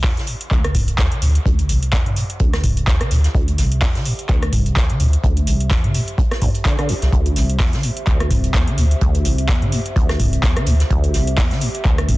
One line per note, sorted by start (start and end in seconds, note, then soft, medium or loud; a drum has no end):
0.00 0.19 E2 loud
0.00 12.18 G4 medium
0.00 12.18 C5 medium
0.00 12.18 E5 medium
0.00 kick loud
0.00 open hi-hat medium
0.04 snare loud
0.04 clap loud
0.17 0.29 D3 medium
0.17 snare soft
0.17 closed hi-hat soft
0.27 0.35 A2 loud
0.27 closed hi-hat medium
0.27 open hi-hat medium
0.41 closed hi-hat medium
0.51 0.60 A1 medium
0.51 0.76 D2 medium
0.51 kick loud
0.51 clap medium
0.51 closed hi-hat medium
0.64 cross-stick medium
0.64 closed hi-hat soft
0.75 0.91 D1 medium
0.75 1.00 C2 medium
0.75 kick medium
0.75 closed hi-hat medium
0.75 mid tom medium
0.75 open hi-hat loud
0.88 closed hi-hat soft
0.88 closed hi-hat medium
0.98 1.07 D2 loud
0.98 1.13 E2 loud
0.98 kick loud
0.98 snare loud
0.98 clap loud
0.98 closed hi-hat medium
1.12 1.23 D3 medium
1.12 closed hi-hat medium
1.22 1.39 D2 loud
1.22 1.29 A2 loud
1.22 closed hi-hat medium
1.22 open hi-hat medium
1.35 closed hi-hat medium
1.46 1.71 D2 medium
1.46 1.62 D2 loud
1.46 kick loud
1.46 closed hi-hat medium
1.59 closed hi-hat soft
1.59 closed hi-hat medium
1.69 1.78 A1 medium
1.69 1.94 C2 medium
1.69 closed hi-hat medium
1.69 open hi-hat loud
1.83 closed hi-hat medium
1.93 2.08 E2 loud
1.93 kick loud
1.93 snare loud
1.93 clap loud
1.93 closed hi-hat medium
2.06 2.18 D3 medium
2.06 closed hi-hat soft
2.06 mid tom medium
2.16 2.24 A2 loud
2.16 closed hi-hat medium
2.16 open hi-hat medium
2.30 closed hi-hat medium
2.40 2.49 A1 medium
2.40 2.65 D2 medium
2.40 kick loud
2.40 closed hi-hat medium
2.53 cross-stick medium
2.53 snare medium
2.53 closed hi-hat soft
2.63 2.80 D1 medium
2.63 2.89 C2 medium
2.63 kick medium
2.63 closed hi-hat medium
2.63 mid tom medium
2.63 open hi-hat loud
2.77 closed hi-hat soft
2.77 closed hi-hat medium
2.87 2.96 D2 loud
2.87 3.02 E2 loud
2.87 kick loud
2.87 snare loud
2.87 clap loud
2.87 closed hi-hat medium
3.01 3.12 D3 medium
3.01 cross-stick medium
3.01 closed hi-hat medium
3.11 3.28 D2 loud
3.11 3.18 A2 loud
3.11 closed hi-hat medium
3.11 open hi-hat medium
3.24 snare soft
3.24 closed hi-hat medium
3.35 3.51 D2 loud
3.35 3.60 D2 medium
3.35 kick loud
3.35 closed hi-hat medium
3.48 closed hi-hat medium
3.48 closed hi-hat soft
3.58 3.67 A1 medium
3.58 3.83 C2 medium
3.58 snare soft
3.58 closed hi-hat medium
3.58 open hi-hat loud
3.72 closed hi-hat medium
3.81 3.97 E2 loud
3.81 kick loud
3.81 snare loud
3.81 clap loud
3.81 open hi-hat medium
3.95 4.07 D3 medium
3.95 snare soft
3.95 closed hi-hat soft
4.05 4.13 A2 loud
4.05 closed hi-hat medium
4.05 open hi-hat medium
4.19 closed hi-hat medium
4.29 4.38 A1 medium
4.29 4.54 D2 medium
4.29 kick loud
4.29 clap medium
4.29 closed hi-hat medium
4.42 cross-stick medium
4.42 closed hi-hat soft
4.52 4.69 D1 medium
4.52 4.78 C2 medium
4.52 kick medium
4.52 closed hi-hat medium
4.52 mid tom medium
4.52 open hi-hat loud
4.66 closed hi-hat soft
4.66 closed hi-hat medium
4.76 4.85 D2 loud
4.76 4.91 E2 loud
4.76 kick loud
4.76 snare loud
4.76 clap loud
4.76 closed hi-hat medium
4.90 5.02 D3 medium
4.90 closed hi-hat medium
5.00 5.17 D2 loud
5.00 5.07 A2 loud
5.00 closed hi-hat medium
5.00 open hi-hat medium
5.13 closed hi-hat medium
5.24 5.40 D2 loud
5.24 5.49 D2 medium
5.24 kick loud
5.24 closed hi-hat medium
5.37 closed hi-hat soft
5.47 5.56 A1 medium
5.47 5.72 C2 medium
5.47 closed hi-hat medium
5.47 open hi-hat loud
5.61 closed hi-hat medium
5.71 5.86 E2 loud
5.71 kick loud
5.71 snare loud
5.71 clap loud
5.71 closed hi-hat medium
5.84 5.96 D3 medium
5.84 closed hi-hat soft
5.84 mid tom medium
5.94 6.02 A2 loud
5.94 closed hi-hat medium
5.94 open hi-hat medium
6.08 closed hi-hat medium
6.18 6.27 A1 medium
6.18 6.23 D2 medium
6.18 kick loud
6.18 closed hi-hat loud
6.31 cross-stick medium
6.31 snare medium
6.31 closed hi-hat soft
6.42 6.49 D2 medium
6.42 kick medium
6.42 closed hi-hat medium
6.42 mid tom medium
6.42 open hi-hat loud
6.54 closed hi-hat soft
6.54 closed hi-hat medium
6.65 6.76 D3 medium
6.65 kick loud
6.65 snare loud
6.65 clap loud
6.65 closed hi-hat medium
6.79 6.90 D3 medium
6.79 cross-stick medium
6.79 closed hi-hat medium
6.89 6.93 D2 medium
6.89 closed hi-hat medium
6.89 open hi-hat medium
7.02 7.09 C2 loud
7.02 snare soft
7.02 closed hi-hat medium
7.13 7.29 D2 medium
7.13 7.38 D2 medium
7.13 kick loud
7.13 closed hi-hat medium
7.26 closed hi-hat soft
7.26 closed hi-hat medium
7.36 7.45 A1 medium
7.36 7.61 C2 medium
7.36 snare soft
7.36 closed hi-hat medium
7.36 open hi-hat loud
7.50 closed hi-hat medium
7.60 7.75 E2 loud
7.60 kick loud
7.60 snare loud
7.60 clap loud
7.60 open hi-hat medium
7.73 7.85 D3 medium
7.73 snare medium
7.73 closed hi-hat soft
7.83 7.91 A2 loud
7.83 closed hi-hat medium
7.83 open hi-hat medium
7.97 closed hi-hat medium
8.07 8.16 A1 medium
8.07 8.32 D2 medium
8.07 kick loud
8.07 clap medium
8.07 closed hi-hat medium
8.20 cross-stick medium
8.20 closed hi-hat soft
8.31 8.47 D1 medium
8.31 8.56 C2 medium
8.31 kick medium
8.31 closed hi-hat medium
8.31 mid tom medium
8.31 open hi-hat loud
8.44 closed hi-hat medium
8.44 closed hi-hat soft
8.54 8.63 D2 loud
8.54 8.69 E2 loud
8.54 kick loud
8.54 snare loud
8.54 clap loud
8.54 closed hi-hat medium
8.68 8.79 D3 medium
8.68 closed hi-hat medium
8.78 8.95 D2 loud
8.78 8.85 A2 loud
8.78 closed hi-hat medium
8.78 open hi-hat medium
8.91 closed hi-hat medium
9.01 9.27 D2 medium
9.01 9.18 D2 loud
9.01 kick loud
9.01 closed hi-hat medium
9.15 closed hi-hat medium
9.15 closed hi-hat soft
9.25 9.34 A1 medium
9.25 9.50 C2 medium
9.25 closed hi-hat medium
9.25 open hi-hat loud
9.38 closed hi-hat medium
9.49 9.64 E2 loud
9.49 kick loud
9.49 snare loud
9.49 clap loud
9.49 closed hi-hat medium
9.62 9.74 D3 medium
9.62 closed hi-hat soft
9.62 mid tom medium
9.72 9.80 A2 loud
9.72 closed hi-hat medium
9.72 open hi-hat medium
9.86 closed hi-hat medium
9.96 10.05 A1 medium
9.96 10.21 D2 medium
9.96 kick loud
9.96 closed hi-hat medium
10.09 cross-stick medium
10.09 snare medium
10.09 closed hi-hat soft
10.20 10.36 D1 medium
10.20 10.45 C2 medium
10.20 kick medium
10.20 closed hi-hat medium
10.20 mid tom medium
10.20 open hi-hat loud
10.33 closed hi-hat medium
10.33 closed hi-hat soft
10.43 10.52 D2 loud
10.43 10.58 E2 loud
10.43 kick loud
10.43 snare loud
10.43 clap loud
10.43 closed hi-hat medium
10.57 10.68 D3 medium
10.57 cross-stick medium
10.57 closed hi-hat medium
10.66 10.84 D2 loud
10.66 10.74 A2 loud
10.66 closed hi-hat medium
10.66 open hi-hat medium
10.80 snare soft
10.80 closed hi-hat medium
10.90 11.07 D2 loud
10.90 11.16 D2 medium
10.90 kick loud
10.90 closed hi-hat medium
11.03 closed hi-hat soft
11.03 closed hi-hat medium
11.14 11.23 A1 medium
11.14 11.39 C2 medium
11.14 snare soft
11.14 closed hi-hat medium
11.14 open hi-hat loud
11.27 closed hi-hat medium
11.37 11.53 E2 loud
11.37 kick loud
11.37 snare loud
11.37 clap loud
11.37 open hi-hat medium
11.51 11.63 D3 medium
11.51 snare soft
11.51 closed hi-hat soft
11.61 11.69 A2 loud
11.61 closed hi-hat medium
11.61 open hi-hat medium
11.75 closed hi-hat medium
11.85 11.94 A1 medium
11.85 12.10 D2 medium
11.85 kick loud
11.85 clap medium
11.85 closed hi-hat medium
11.98 cross-stick medium
11.98 closed hi-hat soft
12.09 12.18 D1 medium
12.09 12.18 C2 medium
12.09 kick medium
12.09 closed hi-hat medium
12.09 mid tom medium
12.09 open hi-hat loud